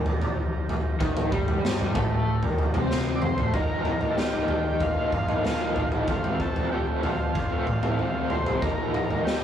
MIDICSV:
0, 0, Header, 1, 7, 480
1, 0, Start_track
1, 0, Tempo, 634921
1, 760, Time_signature, 4, 2, 24, 8
1, 7134, End_track
2, 0, Start_track
2, 0, Title_t, "Transistor combo organ"
2, 0, Program_c, 0, 18
2, 0, Note_on_c, 0, 53, 65
2, 0, Note_on_c, 0, 55, 53
2, 0, Note_on_c, 0, 63, 58
2, 0, Note_on_c, 0, 82, 63
2, 2646, Note_off_c, 0, 53, 0
2, 2647, Note_off_c, 0, 55, 0
2, 2653, Note_off_c, 0, 63, 0
2, 2654, Note_off_c, 0, 82, 0
2, 2663, Note_on_c, 0, 63, 58
2, 2663, Note_on_c, 0, 70, 53
2, 2664, Note_on_c, 0, 77, 72
2, 2666, Note_on_c, 0, 65, 54
2, 4572, Note_off_c, 0, 63, 0
2, 4573, Note_off_c, 0, 70, 0
2, 4573, Note_off_c, 0, 77, 0
2, 4574, Note_off_c, 0, 65, 0
2, 4600, Note_on_c, 0, 79, 66
2, 4603, Note_on_c, 0, 65, 57
2, 4603, Note_on_c, 0, 72, 54
2, 4608, Note_on_c, 0, 69, 58
2, 6501, Note_off_c, 0, 79, 0
2, 6503, Note_off_c, 0, 72, 0
2, 6506, Note_off_c, 0, 69, 0
2, 6513, Note_on_c, 0, 58, 62
2, 6515, Note_on_c, 0, 75, 57
2, 6516, Note_on_c, 0, 82, 66
2, 7134, Note_off_c, 0, 58, 0
2, 7134, Note_off_c, 0, 65, 0
2, 7134, Note_off_c, 0, 75, 0
2, 7134, Note_off_c, 0, 82, 0
2, 7134, End_track
3, 0, Start_track
3, 0, Title_t, "Transistor combo organ"
3, 0, Program_c, 1, 18
3, 2385, Note_on_c, 1, 74, 72
3, 2434, Note_on_c, 1, 72, 102
3, 2438, Note_off_c, 1, 74, 0
3, 2671, Note_on_c, 1, 70, 103
3, 2683, Note_off_c, 1, 72, 0
3, 3104, Note_on_c, 1, 69, 64
3, 3114, Note_off_c, 1, 70, 0
3, 3155, Note_on_c, 1, 67, 77
3, 3158, Note_off_c, 1, 69, 0
3, 3638, Note_on_c, 1, 65, 104
3, 3651, Note_off_c, 1, 67, 0
3, 4106, Note_off_c, 1, 65, 0
3, 4115, Note_on_c, 1, 65, 95
3, 4452, Note_off_c, 1, 65, 0
3, 4601, Note_on_c, 1, 65, 89
3, 4844, Note_on_c, 1, 69, 78
3, 4848, Note_off_c, 1, 65, 0
3, 5065, Note_off_c, 1, 69, 0
3, 5081, Note_on_c, 1, 67, 81
3, 5189, Note_off_c, 1, 67, 0
3, 5316, Note_on_c, 1, 65, 77
3, 6281, Note_on_c, 1, 72, 106
3, 6307, Note_off_c, 1, 65, 0
3, 6514, Note_on_c, 1, 70, 90
3, 6528, Note_off_c, 1, 72, 0
3, 6967, Note_off_c, 1, 70, 0
3, 6993, Note_on_c, 1, 67, 88
3, 7134, Note_off_c, 1, 67, 0
3, 7134, End_track
4, 0, Start_track
4, 0, Title_t, "Overdriven electric guitar"
4, 0, Program_c, 2, 29
4, 0, Note_on_c, 2, 51, 68
4, 116, Note_off_c, 2, 51, 0
4, 758, Note_on_c, 2, 51, 108
4, 991, Note_off_c, 2, 51, 0
4, 995, Note_on_c, 2, 55, 105
4, 1469, Note_off_c, 2, 55, 0
4, 1479, Note_on_c, 2, 57, 95
4, 1831, Note_off_c, 2, 57, 0
4, 1842, Note_on_c, 2, 51, 65
4, 2032, Note_off_c, 2, 51, 0
4, 2081, Note_on_c, 2, 60, 106
4, 2552, Note_off_c, 2, 60, 0
4, 2559, Note_on_c, 2, 57, 103
4, 2671, Note_off_c, 2, 57, 0
4, 2676, Note_on_c, 2, 51, 90
4, 2683, Note_on_c, 2, 53, 88
4, 2687, Note_on_c, 2, 58, 83
4, 2695, Note_on_c, 2, 63, 107
4, 3023, Note_off_c, 2, 63, 0
4, 3032, Note_off_c, 2, 58, 0
4, 3032, Note_on_c, 2, 63, 64
4, 3041, Note_on_c, 2, 58, 55
4, 3047, Note_off_c, 2, 53, 0
4, 3050, Note_on_c, 2, 53, 51
4, 3139, Note_off_c, 2, 51, 0
4, 3149, Note_on_c, 2, 51, 82
4, 3153, Note_off_c, 2, 58, 0
4, 3156, Note_off_c, 2, 53, 0
4, 3159, Note_on_c, 2, 53, 83
4, 3161, Note_off_c, 2, 63, 0
4, 3162, Note_on_c, 2, 58, 91
4, 3170, Note_on_c, 2, 63, 94
4, 3379, Note_off_c, 2, 51, 0
4, 3389, Note_on_c, 2, 51, 71
4, 3393, Note_off_c, 2, 58, 0
4, 3394, Note_off_c, 2, 53, 0
4, 3397, Note_off_c, 2, 63, 0
4, 3397, Note_on_c, 2, 53, 76
4, 3402, Note_on_c, 2, 58, 78
4, 3406, Note_on_c, 2, 63, 78
4, 3509, Note_off_c, 2, 63, 0
4, 3515, Note_off_c, 2, 58, 0
4, 3521, Note_off_c, 2, 53, 0
4, 3752, Note_on_c, 2, 63, 65
4, 3754, Note_off_c, 2, 51, 0
4, 3764, Note_on_c, 2, 58, 57
4, 3771, Note_on_c, 2, 53, 51
4, 3873, Note_off_c, 2, 58, 0
4, 3876, Note_off_c, 2, 63, 0
4, 3881, Note_off_c, 2, 53, 0
4, 3996, Note_on_c, 2, 63, 63
4, 4008, Note_on_c, 2, 58, 59
4, 4014, Note_on_c, 2, 53, 56
4, 4112, Note_on_c, 2, 51, 84
4, 4117, Note_off_c, 2, 53, 0
4, 4117, Note_off_c, 2, 58, 0
4, 4120, Note_on_c, 2, 53, 90
4, 4123, Note_off_c, 2, 63, 0
4, 4126, Note_on_c, 2, 58, 88
4, 4133, Note_on_c, 2, 63, 93
4, 4344, Note_off_c, 2, 51, 0
4, 4353, Note_on_c, 2, 51, 74
4, 4355, Note_off_c, 2, 58, 0
4, 4358, Note_off_c, 2, 53, 0
4, 4361, Note_on_c, 2, 53, 77
4, 4363, Note_off_c, 2, 63, 0
4, 4364, Note_on_c, 2, 58, 71
4, 4372, Note_on_c, 2, 63, 79
4, 4472, Note_off_c, 2, 63, 0
4, 4480, Note_off_c, 2, 58, 0
4, 4481, Note_on_c, 2, 63, 67
4, 4489, Note_on_c, 2, 58, 60
4, 4494, Note_off_c, 2, 53, 0
4, 4497, Note_on_c, 2, 53, 53
4, 4582, Note_off_c, 2, 51, 0
4, 4586, Note_off_c, 2, 63, 0
4, 4590, Note_off_c, 2, 58, 0
4, 4598, Note_on_c, 2, 41, 92
4, 4606, Note_on_c, 2, 48, 95
4, 4607, Note_off_c, 2, 53, 0
4, 4610, Note_on_c, 2, 53, 97
4, 4614, Note_on_c, 2, 57, 93
4, 4620, Note_on_c, 2, 60, 100
4, 4948, Note_off_c, 2, 60, 0
4, 4957, Note_on_c, 2, 60, 52
4, 4958, Note_off_c, 2, 57, 0
4, 4967, Note_on_c, 2, 57, 48
4, 4972, Note_off_c, 2, 53, 0
4, 4975, Note_on_c, 2, 53, 46
4, 5066, Note_off_c, 2, 41, 0
4, 5071, Note_off_c, 2, 48, 0
4, 5075, Note_on_c, 2, 41, 89
4, 5080, Note_on_c, 2, 48, 91
4, 5082, Note_off_c, 2, 57, 0
4, 5083, Note_off_c, 2, 53, 0
4, 5083, Note_off_c, 2, 60, 0
4, 5086, Note_on_c, 2, 53, 106
4, 5091, Note_on_c, 2, 57, 88
4, 5093, Note_on_c, 2, 60, 96
4, 5301, Note_off_c, 2, 48, 0
4, 5310, Note_on_c, 2, 48, 79
4, 5315, Note_off_c, 2, 53, 0
4, 5316, Note_off_c, 2, 57, 0
4, 5318, Note_on_c, 2, 53, 77
4, 5321, Note_off_c, 2, 60, 0
4, 5325, Note_on_c, 2, 57, 73
4, 5330, Note_on_c, 2, 60, 75
4, 5430, Note_off_c, 2, 60, 0
4, 5431, Note_off_c, 2, 57, 0
4, 5435, Note_off_c, 2, 48, 0
4, 5440, Note_off_c, 2, 53, 0
4, 5558, Note_off_c, 2, 41, 0
4, 5674, Note_on_c, 2, 60, 62
4, 5684, Note_on_c, 2, 57, 60
4, 5692, Note_on_c, 2, 53, 51
4, 5795, Note_off_c, 2, 60, 0
4, 5796, Note_off_c, 2, 53, 0
4, 5796, Note_off_c, 2, 57, 0
4, 5912, Note_on_c, 2, 60, 72
4, 5921, Note_on_c, 2, 57, 57
4, 5930, Note_on_c, 2, 53, 50
4, 6029, Note_on_c, 2, 41, 74
4, 6033, Note_off_c, 2, 57, 0
4, 6034, Note_on_c, 2, 48, 84
4, 6037, Note_off_c, 2, 53, 0
4, 6039, Note_off_c, 2, 60, 0
4, 6040, Note_on_c, 2, 53, 88
4, 6042, Note_on_c, 2, 57, 74
4, 6048, Note_on_c, 2, 60, 95
4, 6264, Note_off_c, 2, 48, 0
4, 6273, Note_on_c, 2, 48, 62
4, 6277, Note_off_c, 2, 53, 0
4, 6277, Note_off_c, 2, 57, 0
4, 6280, Note_on_c, 2, 53, 71
4, 6283, Note_off_c, 2, 60, 0
4, 6286, Note_on_c, 2, 57, 66
4, 6292, Note_on_c, 2, 60, 77
4, 6380, Note_off_c, 2, 60, 0
4, 6389, Note_on_c, 2, 60, 73
4, 6390, Note_off_c, 2, 57, 0
4, 6399, Note_on_c, 2, 57, 61
4, 6405, Note_off_c, 2, 53, 0
4, 6408, Note_on_c, 2, 53, 52
4, 6500, Note_off_c, 2, 41, 0
4, 6500, Note_off_c, 2, 60, 0
4, 6502, Note_off_c, 2, 48, 0
4, 6505, Note_off_c, 2, 57, 0
4, 6516, Note_on_c, 2, 51, 96
4, 6520, Note_off_c, 2, 53, 0
4, 6523, Note_on_c, 2, 53, 99
4, 6528, Note_on_c, 2, 58, 106
4, 6531, Note_on_c, 2, 63, 100
4, 6868, Note_off_c, 2, 63, 0
4, 6877, Note_on_c, 2, 63, 58
4, 6885, Note_off_c, 2, 58, 0
4, 6888, Note_on_c, 2, 58, 54
4, 6893, Note_off_c, 2, 53, 0
4, 6896, Note_on_c, 2, 53, 50
4, 6987, Note_off_c, 2, 51, 0
4, 6996, Note_on_c, 2, 51, 97
4, 7001, Note_off_c, 2, 53, 0
4, 7004, Note_on_c, 2, 53, 91
4, 7005, Note_off_c, 2, 63, 0
4, 7006, Note_off_c, 2, 58, 0
4, 7009, Note_on_c, 2, 58, 98
4, 7014, Note_on_c, 2, 63, 95
4, 7134, Note_off_c, 2, 51, 0
4, 7134, Note_off_c, 2, 53, 0
4, 7134, Note_off_c, 2, 58, 0
4, 7134, Note_off_c, 2, 63, 0
4, 7134, End_track
5, 0, Start_track
5, 0, Title_t, "Upright bass"
5, 0, Program_c, 3, 32
5, 0, Note_on_c, 3, 39, 89
5, 145, Note_off_c, 3, 39, 0
5, 762, Note_on_c, 3, 39, 83
5, 984, Note_off_c, 3, 39, 0
5, 1002, Note_on_c, 3, 43, 91
5, 1450, Note_off_c, 3, 43, 0
5, 1479, Note_on_c, 3, 45, 104
5, 1813, Note_off_c, 3, 45, 0
5, 1835, Note_on_c, 3, 39, 69
5, 2060, Note_off_c, 3, 39, 0
5, 2076, Note_on_c, 3, 48, 103
5, 2527, Note_off_c, 3, 48, 0
5, 2560, Note_on_c, 3, 45, 89
5, 2669, Note_off_c, 3, 45, 0
5, 2673, Note_on_c, 3, 39, 82
5, 2895, Note_off_c, 3, 39, 0
5, 3277, Note_on_c, 3, 51, 87
5, 3608, Note_off_c, 3, 51, 0
5, 3633, Note_on_c, 3, 39, 84
5, 3746, Note_off_c, 3, 39, 0
5, 3873, Note_on_c, 3, 43, 80
5, 4095, Note_off_c, 3, 43, 0
5, 4352, Note_on_c, 3, 34, 81
5, 4575, Note_off_c, 3, 34, 0
5, 4596, Note_on_c, 3, 41, 80
5, 4818, Note_off_c, 3, 41, 0
5, 5193, Note_on_c, 3, 53, 72
5, 5526, Note_off_c, 3, 53, 0
5, 5558, Note_on_c, 3, 41, 93
5, 5669, Note_off_c, 3, 41, 0
5, 5794, Note_on_c, 3, 45, 90
5, 6017, Note_off_c, 3, 45, 0
5, 6271, Note_on_c, 3, 36, 76
5, 6495, Note_off_c, 3, 36, 0
5, 6520, Note_on_c, 3, 39, 93
5, 6740, Note_off_c, 3, 39, 0
5, 7134, End_track
6, 0, Start_track
6, 0, Title_t, "Muted overdriven electric guitar strokes"
6, 3518, Note_on_c, 9, 29, 41
6, 3594, Note_off_c, 9, 29, 0
6, 3878, Note_on_c, 9, 29, 35
6, 3953, Note_off_c, 9, 29, 0
6, 5440, Note_on_c, 9, 29, 44
6, 5515, Note_off_c, 9, 29, 0
6, 5799, Note_on_c, 9, 29, 43
6, 5875, Note_off_c, 9, 29, 0
6, 7134, End_track
7, 0, Start_track
7, 0, Title_t, "Drums"
7, 44, Note_on_c, 9, 43, 80
7, 120, Note_off_c, 9, 43, 0
7, 163, Note_on_c, 9, 43, 86
7, 238, Note_off_c, 9, 43, 0
7, 524, Note_on_c, 9, 43, 81
7, 600, Note_off_c, 9, 43, 0
7, 760, Note_on_c, 9, 36, 115
7, 763, Note_on_c, 9, 43, 91
7, 836, Note_off_c, 9, 36, 0
7, 839, Note_off_c, 9, 43, 0
7, 882, Note_on_c, 9, 47, 92
7, 958, Note_off_c, 9, 47, 0
7, 1000, Note_on_c, 9, 36, 94
7, 1000, Note_on_c, 9, 43, 76
7, 1075, Note_off_c, 9, 36, 0
7, 1075, Note_off_c, 9, 43, 0
7, 1119, Note_on_c, 9, 43, 85
7, 1195, Note_off_c, 9, 43, 0
7, 1247, Note_on_c, 9, 38, 83
7, 1323, Note_off_c, 9, 38, 0
7, 1359, Note_on_c, 9, 43, 71
7, 1434, Note_off_c, 9, 43, 0
7, 1475, Note_on_c, 9, 43, 91
7, 1475, Note_on_c, 9, 47, 86
7, 1477, Note_on_c, 9, 36, 107
7, 1550, Note_off_c, 9, 43, 0
7, 1550, Note_off_c, 9, 47, 0
7, 1553, Note_off_c, 9, 36, 0
7, 1834, Note_on_c, 9, 43, 80
7, 1910, Note_off_c, 9, 43, 0
7, 1954, Note_on_c, 9, 43, 75
7, 2029, Note_off_c, 9, 43, 0
7, 2072, Note_on_c, 9, 43, 94
7, 2147, Note_off_c, 9, 43, 0
7, 2201, Note_on_c, 9, 38, 59
7, 2276, Note_off_c, 9, 38, 0
7, 2432, Note_on_c, 9, 45, 79
7, 2508, Note_off_c, 9, 45, 0
7, 2554, Note_on_c, 9, 43, 84
7, 2629, Note_off_c, 9, 43, 0
7, 2674, Note_on_c, 9, 43, 81
7, 2675, Note_on_c, 9, 36, 97
7, 2750, Note_off_c, 9, 36, 0
7, 2750, Note_off_c, 9, 43, 0
7, 2912, Note_on_c, 9, 47, 73
7, 2987, Note_off_c, 9, 47, 0
7, 3030, Note_on_c, 9, 43, 79
7, 3106, Note_off_c, 9, 43, 0
7, 3158, Note_on_c, 9, 38, 74
7, 3234, Note_off_c, 9, 38, 0
7, 3389, Note_on_c, 9, 43, 81
7, 3465, Note_off_c, 9, 43, 0
7, 3631, Note_on_c, 9, 43, 79
7, 3633, Note_on_c, 9, 36, 94
7, 3707, Note_off_c, 9, 43, 0
7, 3708, Note_off_c, 9, 36, 0
7, 3873, Note_on_c, 9, 43, 78
7, 3875, Note_on_c, 9, 36, 56
7, 3949, Note_off_c, 9, 43, 0
7, 3950, Note_off_c, 9, 36, 0
7, 3995, Note_on_c, 9, 47, 69
7, 4071, Note_off_c, 9, 47, 0
7, 4116, Note_on_c, 9, 43, 67
7, 4122, Note_on_c, 9, 38, 72
7, 4192, Note_off_c, 9, 43, 0
7, 4198, Note_off_c, 9, 38, 0
7, 4353, Note_on_c, 9, 43, 77
7, 4429, Note_off_c, 9, 43, 0
7, 4474, Note_on_c, 9, 47, 66
7, 4550, Note_off_c, 9, 47, 0
7, 4593, Note_on_c, 9, 43, 80
7, 4596, Note_on_c, 9, 36, 107
7, 4668, Note_off_c, 9, 43, 0
7, 4671, Note_off_c, 9, 36, 0
7, 4718, Note_on_c, 9, 43, 86
7, 4794, Note_off_c, 9, 43, 0
7, 4838, Note_on_c, 9, 36, 65
7, 4913, Note_off_c, 9, 36, 0
7, 4960, Note_on_c, 9, 43, 78
7, 5036, Note_off_c, 9, 43, 0
7, 5317, Note_on_c, 9, 43, 80
7, 5393, Note_off_c, 9, 43, 0
7, 5556, Note_on_c, 9, 43, 71
7, 5559, Note_on_c, 9, 36, 102
7, 5632, Note_off_c, 9, 43, 0
7, 5634, Note_off_c, 9, 36, 0
7, 5799, Note_on_c, 9, 43, 70
7, 5874, Note_off_c, 9, 43, 0
7, 5918, Note_on_c, 9, 47, 75
7, 5994, Note_off_c, 9, 47, 0
7, 6041, Note_on_c, 9, 43, 68
7, 6116, Note_off_c, 9, 43, 0
7, 6276, Note_on_c, 9, 43, 72
7, 6352, Note_off_c, 9, 43, 0
7, 6399, Note_on_c, 9, 47, 72
7, 6475, Note_off_c, 9, 47, 0
7, 6519, Note_on_c, 9, 43, 84
7, 6520, Note_on_c, 9, 36, 101
7, 6594, Note_off_c, 9, 43, 0
7, 6595, Note_off_c, 9, 36, 0
7, 6761, Note_on_c, 9, 47, 74
7, 6837, Note_off_c, 9, 47, 0
7, 6883, Note_on_c, 9, 43, 71
7, 6959, Note_off_c, 9, 43, 0
7, 7009, Note_on_c, 9, 38, 78
7, 7084, Note_off_c, 9, 38, 0
7, 7134, End_track
0, 0, End_of_file